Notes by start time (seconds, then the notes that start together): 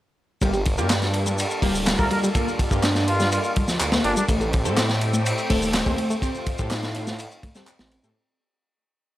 0.41 G1 G3 A#3 D4 F4 G4 A4, kick, ride, shaker
0.53 G4, ride, shaker
0.66 kick, ride
0.77 G2 A#3 F4 G4, ride, shaker
0.90 snare, clap, ride, shaker
1.02 snare, ride, shaker
1.13 ride
1.26 G3, shaker
1.38 ride, shaker
1.51 shaker
1.62 D1 G3 A#3 F4 G4, kick, open hi-hat, ride
1.75 shaker
1.87 snare, clap, ride, shaker
1.99 D2 G3 A#3 F4 A4 A#4, kick, shaker
2.10 G3 A#4, ride
2.23 G3, shaker
2.35 A#3 F4 A4, kick, ride, shaker
2.48 shaker
2.59 kick, ride
2.71 G2 A#3 F4 G4, kick, shaker
2.83 D4, snare, clap, ride, shaker
2.95 snare, ride, shaker
3.08 F4, ride
3.20 G3, snare, shaker
3.32 F4, ride, shaker
3.44 F4, shaker
3.56 G3, kick, ride
3.68 D2 F3, snare, shaker
3.80 D2, clap, ride, shaker
3.92 A#3, snare, shaker
4.04 G1 A#3 D4 F4 G4, ride
4.17 G3 D4, shaker
4.28 A1 A3 C4 G4 A4, kick, ride, shaker
4.41 A4, ride, shaker
4.53 kick, ride
4.65 A2 C4 G4 A4, ride, shaker
4.77 snare, clap, ride, shaker
4.89 snare, ride, shaker
5.01 ride
5.13 A3, shaker
5.26 ride, shaker
5.38 shaker
5.50 D#1 A3 C4 G4 A4, kick, open hi-hat, ride
5.62 shaker
5.74 snare, clap, ride, shaker
5.86 D#2 A3 C4 G4 C5, kick, shaker
5.98 A3, ride
6.10 A3, shaker
6.22 C4 F4 G4 C5, kick, ride, shaker
6.35 shaker
6.47 kick, ride
6.58 A2 C4 G4 A4, kick, shaker
6.71 D#4, snare, clap, ride, shaker
6.83 snare, ride, shaker
6.95 ride
7.07 A3, snare, shaker
7.19 ride, shaker
7.31 shaker
7.43 A3, kick, ride
7.55 G3 C4 G4 A4, snare, shaker
7.67 clap, ride, shaker
7.79 A1 C4, snare, shaker
7.92 ride
8.04 A2 A3 C4 G4 A4, shaker